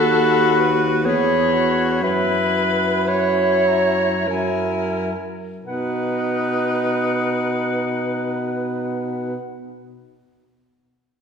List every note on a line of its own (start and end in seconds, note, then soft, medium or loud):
0.00 1.07 D#2 medium
0.00 1.07 F#4 medium
0.00 0.61 A4 medium
0.00 1.02 B5 medium
0.60 1.07 B4 medium
1.05 2.03 E2 medium
1.05 1.55 G#4 medium
1.05 2.02 C#5 medium
1.05 2.01 B5 medium
1.54 2.05 F#4 medium
2.02 4.27 F#2 medium
2.02 3.09 E4 medium
2.02 3.10 B4 medium
2.02 3.07 B5 medium
3.08 4.27 E4 medium
3.08 4.29 C#5 medium
3.08 3.69 B5 soft
3.67 4.32 A#5 soft
4.27 5.12 F#2 soft
4.27 5.13 E4 soft
4.27 5.47 A#4 medium
4.27 5.15 G#5 soft
5.64 9.35 B2 medium
5.64 9.37 D#4 medium
5.64 9.35 B4 medium
5.64 9.38 F#5 medium